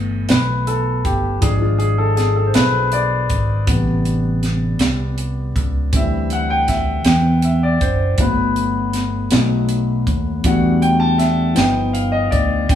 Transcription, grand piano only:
0.00 1.37 E3 soft
0.00 1.38 A3 soft
0.00 1.38 B3 medium
0.29 0.68 B4 medium
0.67 1.06 A4 medium
1.05 1.43 G4 medium
1.40 3.62 F3 soft
1.40 3.63 G#3 soft
1.40 3.63 D4 medium
1.40 1.55 G#4 medium
1.57 1.80 F4 medium
1.57 1.61 G#4 medium
1.78 1.98 G#4 medium
1.98 2.18 A4 medium
2.16 2.36 G#4 medium
2.36 2.47 A4 medium
2.47 2.54 C5 medium
2.55 2.93 B4 medium
2.93 4.01 D5 medium
3.66 4.75 C3 soft
3.66 4.76 G3 soft
3.66 4.76 B3 medium
5.93 8.14 E3 soft
5.93 8.14 G3 soft
5.93 8.15 C4 medium
5.93 6.33 E5 medium
6.33 6.51 F#5 medium
6.50 6.69 G5 medium
6.69 7.03 E5 medium
7.05 7.44 G5 medium
7.44 7.63 E5 medium
7.63 7.82 D5 medium
7.81 8.20 C5 medium
8.20 9.28 F#3 soft
8.20 9.28 A3 soft
8.20 9.28 B3 medium
8.20 10.03 B4 medium
9.31 10.40 F#3 soft
9.31 10.40 A3 soft
9.31 10.41 D#4 medium
10.45 11.53 G3 medium
10.45 11.53 A3 soft
10.45 11.54 D4 soft
10.45 11.54 F#4 medium
10.45 10.84 F#5 medium
10.82 10.99 G5 medium
11.00 11.05 A5 medium
11.18 11.58 E5 medium
11.55 12.65 F3 soft
11.55 12.65 B3 soft
11.55 12.65 D#4 medium
11.55 11.95 G5 medium
11.93 12.13 F5 medium
12.12 12.32 D#5 medium
12.31 12.70 D5 medium
12.69 12.75 D#3 medium
12.69 12.75 C4 soft
12.69 12.75 D4 medium
12.69 12.75 G5 medium

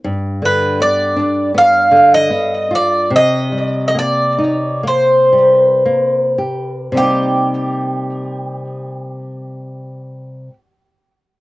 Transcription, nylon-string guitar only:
0.04 3.07 G2 medium
0.42 0.79 D3 soft
0.80 1.16 B3 medium
1.16 1.53 D4 medium
1.54 1.91 B3 medium
1.92 2.30 D3 medium
2.30 2.70 B3 medium
2.71 3.10 F4 medium
3.10 6.91 C3 medium
3.52 3.94 G3 medium
3.95 4.37 A#3 medium
4.38 4.83 D#4 medium
4.83 5.31 A#3 medium
5.33 5.83 G3 medium
5.85 6.38 A#3 medium
6.38 6.94 G4 soft
6.92 10.48 C3 medium
6.92 10.50 G3 soft
6.96 10.52 A#3 soft
6.96 7.01 C4 soft
7.01 10.57 D#4 medium

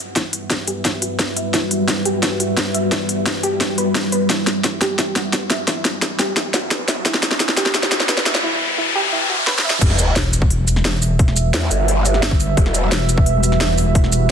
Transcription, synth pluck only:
0.16 0.25 E4 loud
0.50 0.65 E4 medium
0.68 0.73 G4 loud
0.85 0.91 E4 medium
1.02 1.08 F#4 medium
1.19 1.29 B4 medium
1.37 1.46 E5 medium
1.54 1.63 E4 loud
1.88 2.02 E4 medium
2.05 2.11 G4 loud
2.23 2.28 E4 medium
2.40 2.46 F#4 medium
2.57 2.67 B4 medium
2.74 2.84 E5 medium
2.92 3.01 E4 loud
3.26 3.40 E4 medium
3.43 3.49 G4 loud
3.61 3.66 E4 medium
3.78 3.87 B4 loud
3.95 4.05 E4 medium
4.12 4.22 B4 loud
4.30 4.39 E4 loud
4.64 4.78 E4 medium
4.81 4.87 G4 loud
4.98 5.04 E4 medium
5.16 5.22 F#4 medium
5.33 5.43 B4 medium
5.50 5.60 E5 medium
5.68 5.77 E4 loud
6.02 6.16 E4 medium
6.19 6.25 G4 loud
6.37 6.42 E4 medium
6.54 6.60 F#4 medium
6.71 6.81 B4 medium
6.88 6.98 E5 medium
7.06 7.15 E4 loud
7.40 7.54 E4 medium
7.57 7.63 G4 loud
7.74 7.80 E4 medium
7.92 7.97 F#4 medium
8.09 8.18 B4 medium
8.26 8.36 E5 medium
8.43 8.53 E4 loud
8.78 8.92 E4 medium
8.95 9.01 G4 loud
9.13 9.18 E4 medium
9.30 9.35 F#4 medium
9.47 9.56 B4 medium
9.64 9.74 E5 medium

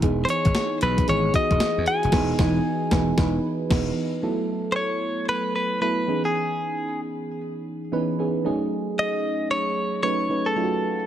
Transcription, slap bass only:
0.03 0.23 E1 loud
0.46 0.53 G#1 medium
0.82 1.03 B1 medium
1.08 1.29 G#1 loud
1.51 1.58 E1 medium
1.78 1.85 E2 medium
2.04 2.11 F1 medium
2.13 2.32 E1 loud
2.39 2.58 E1 loud
2.92 3.11 E1 loud
3.18 3.37 E1 loud
3.71 3.90 E1 loud

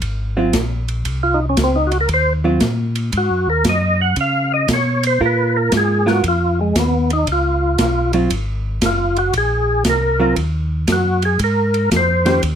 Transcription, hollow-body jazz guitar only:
0.37 0.52 F#3 medium
0.37 0.52 C4 medium
0.37 0.53 F4 medium
2.44 2.60 F#3 medium
2.44 2.60 C4 medium
2.44 2.60 F4 medium
5.21 6.00 F4 medium
5.21 6.00 A#4 medium
6.06 6.22 B3 medium
6.06 6.22 F4 medium
6.06 6.22 A#4 medium
8.14 8.29 F#3 medium
8.14 8.29 C4 medium
8.14 8.29 F4 medium
10.20 10.35 F#3 medium
10.20 10.35 C4 medium
10.20 10.36 F4 medium
12.25 12.41 D#3 medium
12.25 12.41 C#4 medium
12.25 12.41 G4 medium
12.25 12.41 C5 medium

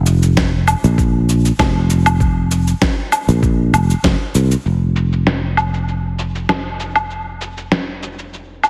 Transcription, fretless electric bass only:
0.00 0.73 F1 medium
0.84 1.50 A#1 loud
1.59 2.72 F1 medium
3.29 3.73 A#1 loud
3.73 3.93 F1 medium
4.04 4.14 F1 loud
4.35 4.54 C2 medium
4.66 8.70 F1 medium

